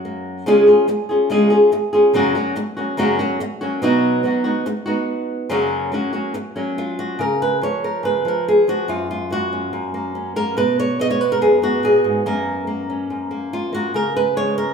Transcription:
0.00 0.46 F#2 medium
0.00 0.44 F#3 medium
0.00 0.47 F#4 medium
0.05 0.44 A#3 soft
0.46 0.66 C#3 medium
0.46 0.66 G#3 medium
0.46 0.67 C#4 medium
0.46 0.67 F4 medium
0.46 0.66 G#4 medium
0.67 0.87 C#4 medium
0.67 0.88 F4 medium
0.67 0.87 G#4 medium
0.88 muted nylon-string guitar stroke medium
1.09 1.30 C#4 soft
1.09 1.30 F4 soft
1.09 1.29 G#4 soft
1.30 1.50 C#3 medium
1.30 1.50 G#3 medium
1.30 1.51 C#4 medium
1.30 1.50 F4 medium
1.30 1.49 G#4 medium
1.50 1.72 C#4 soft
1.50 1.71 F4 medium
1.50 1.71 G#4 medium
1.72 muted nylon-string guitar stroke medium
1.93 2.14 C#4 soft
1.93 2.14 F4 medium
1.93 2.13 G#4 medium
2.13 2.34 F#2 medium
2.13 2.34 C#3 medium
2.13 2.34 F#3 medium
2.13 2.35 A#3 medium
2.13 2.34 C#4 medium
2.13 2.34 F#4 medium
2.35 2.55 F#3 medium
2.35 2.55 A#3 medium
2.35 2.56 C#4 medium
2.35 2.55 F#4 medium
2.56 muted nylon-string guitar stroke medium
2.77 2.97 F#3 soft
2.77 2.97 A#3 soft
2.77 2.97 C#4 soft
2.77 2.97 F#4 medium
2.97 3.18 F#2 medium
2.97 3.18 C#3 medium
2.97 3.19 F#3 medium
2.97 3.19 A#3 medium
2.97 3.19 C#4 medium
2.97 3.18 F#4 medium
3.19 3.39 F#3 medium
3.19 3.40 A#3 medium
3.19 3.40 C#4 medium
3.19 3.39 F#4 medium
3.40 muted nylon-string guitar stroke medium
3.61 3.81 F#3 soft
3.61 3.82 A#3 medium
3.61 3.82 C#4 medium
3.61 3.81 F#4 medium
3.82 4.23 B2 medium
3.82 4.22 F#3 medium
3.82 4.23 B3 medium
3.82 4.23 D#4 medium
3.82 4.24 F#4 medium
4.23 4.44 F#3 medium
4.23 4.44 B3 medium
4.23 4.44 D#4 medium
4.23 4.43 F#4 medium
4.44 4.66 B3 soft
4.44 4.65 D#4 soft
4.44 4.65 F#4 medium
4.66 muted nylon-string guitar stroke medium
4.86 5.50 B3 medium
4.86 5.50 D#4 medium
4.86 5.49 F#4 medium
5.49 5.91 F#2 medium
5.49 5.91 C#3 medium
5.49 5.91 F#3 medium
5.49 5.92 A#3 medium
5.49 5.92 C#4 medium
5.49 5.92 F#4 medium
5.92 6.13 F#3 medium
5.92 6.13 A#3 medium
5.92 6.12 C#4 medium
5.92 6.11 F#4 medium
6.13 6.33 F#3 soft
6.13 6.34 A#3 soft
6.13 6.34 C#4 soft
6.13 6.34 F#4 medium
6.34 muted nylon-string guitar stroke medium
6.56 7.19 F#3 medium
6.56 6.78 A#3 medium
6.56 7.18 C#4 medium
6.78 7.20 F4 medium
6.99 7.20 F#4 medium
7.19 7.61 C#3 medium
7.19 7.83 A#4 medium
7.42 7.62 B4 medium
7.62 8.24 F3 medium
7.62 8.05 C#5 medium
7.84 8.26 A#4 medium
8.03 8.25 C#3 medium
8.03 8.68 B4 medium
8.25 8.66 F3 medium
8.25 8.48 A#4 medium
8.48 8.89 G#4 medium
8.68 8.86 F3 medium
8.68 8.89 F#4 medium
8.88 9.72 F#2 medium
8.88 9.10 F4 medium
9.11 9.73 F4 medium
9.30 9.93 A#3 medium
9.30 10.36 F#4 medium
9.53 10.14 C#4 soft
9.73 10.57 F#2 medium
9.94 10.35 A#3 medium
10.15 10.55 C#4 soft
10.36 10.55 A#3 medium
10.36 10.57 A#4 loud
10.57 11.41 B2 medium
10.57 10.78 B4 medium
10.79 11.00 C#5 loud
10.99 11.61 B3 medium
10.99 11.10 D#5 loud
11.11 11.21 C#5 medium
11.21 11.63 B4 medium
11.32 11.41 A#4 medium
11.41 11.83 F#2 medium
11.41 11.83 G#4 medium
11.62 12.23 B3 medium
11.62 12.26 F#4 medium
11.83 12.04 A#2 medium
11.83 12.26 G#4 medium
12.04 12.26 G#2 medium
12.26 13.09 F#2 medium
12.26 12.66 A#3 medium
12.26 12.89 C#4 soft
12.26 13.53 A#4 medium
12.67 13.30 A#3 medium
12.90 14.19 C#4 soft
13.10 13.94 F#2 medium
13.31 13.71 A#3 medium
13.53 13.95 F4 medium
13.73 13.92 A#3 medium
13.73 13.95 F#4 medium
13.94 14.74 C#3 medium
13.94 14.16 A#4 medium
14.16 14.37 B4 medium
14.36 14.74 G#3 medium
14.36 14.57 C#5 loud
14.58 14.74 A#4 medium

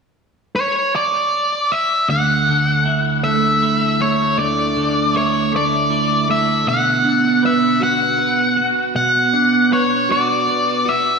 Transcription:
0.56 0.92 C#5 soft
0.96 1.74 D5 soft
1.72 2.07 E5 medium
2.08 4.37 D2 soft
2.08 3.23 F#5 medium
2.48 4.76 D3 soft
2.85 3.61 E4 soft
3.24 4.00 A3 soft
3.24 4.02 E5 medium
3.62 5.13 E4 soft
4.00 5.52 A3 soft
4.00 4.39 C#5 soft
4.38 6.66 D2 soft
4.38 5.17 D5 soft
4.76 8.26 D3 soft
5.14 5.89 E4 soft
5.14 5.51 C#5 medium
5.52 6.28 A3 soft
5.52 6.26 D5 soft
5.90 6.67 E4 soft
6.28 6.70 A3 soft
6.28 6.68 E5 medium
6.67 8.57 B2 soft
6.67 7.45 F#5 medium
7.04 8.95 D4 soft
7.43 8.18 B4 soft
7.43 7.83 E5 medium
7.80 8.56 F#4 soft
7.80 8.95 F#5 medium
8.18 9.71 B4 soft
8.57 10.09 F#4 soft
8.95 10.86 B2 soft
8.95 9.74 F#5 medium
9.33 11.19 D4 soft
9.71 10.46 B4 soft
9.71 10.12 C#5 medium
10.09 10.85 F#4 soft
10.09 10.90 D5 medium
10.47 11.19 B4 soft
10.85 11.19 F#4 soft
10.85 11.19 E5 medium

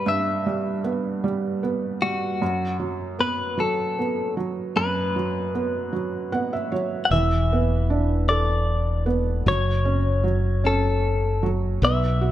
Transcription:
0.00 0.46 G3 soft
0.00 0.84 B3 soft
0.06 2.37 G2 medium
0.06 0.92 E5 medium
0.46 1.22 G3 soft
0.84 1.62 B3 soft
1.24 2.01 G3 soft
1.63 2.39 B3 soft
2.02 2.40 G3 soft
2.02 2.77 F#4 medium
2.42 4.73 F#2 medium
2.80 3.56 F#3 soft
3.19 3.97 B3 soft
3.19 3.60 B4 medium
3.57 4.35 F#3 soft
3.57 4.34 A4 medium
3.98 5.51 B3 soft
4.37 5.14 F#3 soft
4.76 7.07 F#2 medium
4.76 6.69 B4 medium
5.16 5.91 F#3 soft
5.55 6.31 B3 soft
5.93 6.71 F#3 soft
6.32 7.09 B3 soft
6.32 6.51 F#5 medium
6.53 6.71 E5 soft
6.72 7.10 F#3 soft
6.72 7.08 C#5 medium
7.05 7.11 F#5 medium
7.11 9.42 E1 medium
7.11 9.43 E3 medium
7.11 8.28 E5 medium
7.53 9.04 B3 soft
7.90 9.43 D4 soft
8.29 9.44 A4 soft
8.29 9.03 D5 medium
9.06 9.45 B3 soft
9.46 11.78 F#1 medium
9.46 10.22 F#3 medium
9.46 10.69 C#5 medium
9.85 10.62 C#4 soft
10.24 11.41 F#3 soft
10.64 11.78 C#4 medium
10.64 11.50 A4 medium
11.43 11.81 F#3 soft
11.82 12.32 B1 medium
11.82 12.32 B3 medium
11.82 12.32 E5 medium
12.21 12.32 F#4 soft

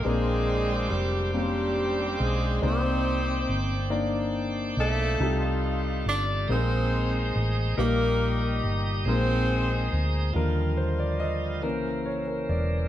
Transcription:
0.00 0.88 G#3 medium
0.00 5.16 C5 medium
0.00 2.59 F5 soft
0.00 5.16 G5 medium
0.00 2.60 D6 medium
0.05 0.87 A#1 medium
0.05 1.30 A#2 medium
0.05 0.83 G#3 medium
0.05 0.84 C4 medium
0.05 1.31 C4 medium
0.05 0.84 D4 medium
0.05 1.31 D4 medium
0.05 0.93 G#4 medium
0.05 0.84 A#4 medium
0.89 2.16 F1 medium
0.89 1.30 G3 medium
0.94 1.35 G4 medium
1.33 2.21 G3 medium
1.33 2.12 A#3 medium
1.33 2.13 C4 medium
1.33 2.60 C4 medium
1.33 1.41 C#4 soft
1.33 2.60 D4 medium
1.33 2.06 G4 medium
1.33 2.13 C5 medium
1.41 2.16 D4 medium
2.19 2.60 B1 medium
2.19 2.67 G#3 medium
2.19 2.61 G#4 medium
2.62 3.45 C2 loud
2.62 3.87 C3 medium
2.62 3.41 A#3 medium
2.62 3.93 C4 medium
2.62 3.41 D#4 medium
2.62 3.89 D#4 medium
2.62 3.89 G4 medium
2.62 3.41 C5 medium
2.62 3.93 C5 medium
2.62 3.41 D5 medium
2.62 5.18 D5 medium
2.62 5.18 D6 medium
3.49 4.74 G1 medium
3.90 4.69 A#3 medium
3.90 4.69 D4 medium
3.90 4.69 D#4 medium
3.90 4.70 D5 medium
4.77 5.17 B1 medium
4.77 5.60 A3 loud
4.77 6.03 D#4 medium
4.77 6.03 F4 medium
4.77 5.60 A4 loud
5.20 6.02 C2 medium
5.20 6.45 C3 medium
5.20 5.99 G3 medium
5.20 5.99 D#4 medium
5.20 5.99 F4 medium
5.20 6.48 G4 soft
5.20 5.99 A4 medium
5.20 6.48 F5 soft
5.20 6.48 A5 soft
6.06 6.46 G1 medium
6.06 6.25 D4 medium
6.06 6.47 D5 medium
6.48 7.31 A#1 medium
6.48 7.28 G#3 medium
6.48 7.74 A#3 medium
6.48 7.28 C4 medium
6.48 7.32 C4 medium
6.48 7.28 D#4 medium
6.48 7.75 D#4 medium
6.48 7.76 G#4 medium
6.48 7.75 G#4 medium
6.48 7.28 A#4 medium
6.48 7.76 C5 medium
6.48 7.36 C5 loud
6.48 10.31 A#5 medium
6.48 7.76 D#6 medium
7.35 7.75 A1 medium
7.77 8.60 A#1 medium
7.77 9.03 A#2 medium
7.77 8.56 G3 medium
7.77 8.56 A#3 medium
7.77 8.61 A#3 loud
7.77 9.02 D#4 medium
7.77 8.56 D#4 medium
7.77 9.02 G4 medium
7.77 9.05 G4 medium
7.77 8.60 A#4 loud
7.77 8.57 A#4 medium
7.77 9.05 D#5 medium
7.77 9.04 D#6 medium
8.64 9.03 G1 medium
9.05 9.88 A#1 medium
9.05 10.32 A#2 medium
9.05 9.85 G#3 medium
9.05 9.85 C4 medium
9.05 10.00 C4 loud
9.05 10.32 D#4 medium
9.05 9.86 D#4 medium
9.05 10.33 G#4 medium
9.05 10.31 G#4 medium
9.05 9.86 A#4 medium
9.05 10.33 C5 medium
9.05 9.99 C5 loud
9.05 10.33 D#6 medium
9.93 10.32 D2 medium
10.33 11.64 D#2 medium
10.33 11.61 D3 medium
10.33 11.60 F3 soft
10.33 11.62 G3 medium
10.33 11.61 G3 soft
10.33 11.62 F4 medium
10.33 10.80 A#4 medium
10.33 11.62 D#5 medium
10.33 11.62 F5 medium
10.77 11.00 C5 medium
11.00 11.20 D5 medium
11.20 11.65 D#5 medium
11.62 12.46 C2 medium
11.62 12.88 C#3 soft
11.62 12.88 E3 medium
11.62 12.20 E3 medium
11.62 12.21 A#3 soft
11.62 12.21 C#4 medium
11.62 12.88 A#4 medium
11.62 12.08 A#4 medium
11.62 12.88 C5 medium
12.06 12.11 C#5 medium
12.28 12.50 A#4 medium
12.49 12.88 E1 medium
12.49 12.88 D5 medium

